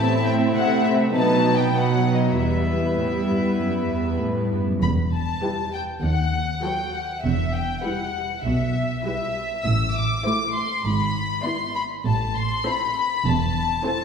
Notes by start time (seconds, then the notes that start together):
Already playing: A2 A3 C4 E4 E5 A5
0.26 G5
0.55 C3 F#5
0.85 E5
1.14 B2 F#3 B3 D#4 B4 A5
1.56 G5
1.74 F#3 B3 D#4 B4 F#5
2.15 D#5
2.34 E2 G3 B3 E4 B4 E5
2.97 A2
3.27 G2
3.58 F#2
3.88 E2
4.19 A2
4.51 G2
4.67 F#2
4.81 E1 E2 B5
5.14 A5
5.42 G3 E4 G4 B4
5.74 G5
6.03 D#2 F#5
6.63 F#3 F#4 A4 B4 G5
6.95 F#5
7.23 E1 E2 E5
7.54 G5
7.83 G3 E4 G4 B4 F#5
8.44 B1 B2 E5
9.04 G3 E4 G4 B4 E5
9.64 A1 A2 E6
9.96 D6
10.25 A3 E4 C5
10.56 C6
10.85 G#1 G#2 B5
11.45 B3 E4 D5 C6
11.75 B5
12.05 A1 A2 A5
12.36 C6
12.65 C4 E4 A4 C5 B5
13.25 E1 E2 A5
13.84 C4 E4 A4 C5 A5